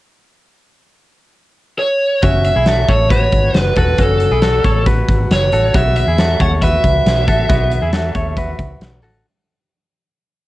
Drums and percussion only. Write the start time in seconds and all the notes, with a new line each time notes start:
2.22 kick, closed hi-hat
2.44 closed hi-hat
2.66 snare, closed hi-hat
2.88 kick, closed hi-hat
3.10 kick, closed hi-hat
3.32 kick, closed hi-hat
3.54 snare, closed hi-hat
3.76 kick, closed hi-hat
3.98 kick, closed hi-hat
4.20 closed hi-hat
4.42 snare, closed hi-hat
4.64 kick, closed hi-hat
4.86 kick, closed hi-hat
5.09 kick, closed hi-hat
5.31 snare, closed hi-hat
5.52 closed hi-hat
5.74 kick, closed hi-hat
5.96 closed hi-hat
6.18 snare, closed hi-hat
6.40 kick, snare, closed hi-hat
6.62 kick, closed hi-hat
6.84 kick, closed hi-hat
7.06 snare, closed hi-hat
7.28 kick, closed hi-hat
7.50 kick, closed hi-hat
7.71 closed hi-hat
7.93 snare, closed hi-hat
8.15 kick, closed hi-hat
8.37 kick, closed hi-hat
8.59 kick, closed hi-hat
8.81 snare, closed hi-hat
9.02 open hi-hat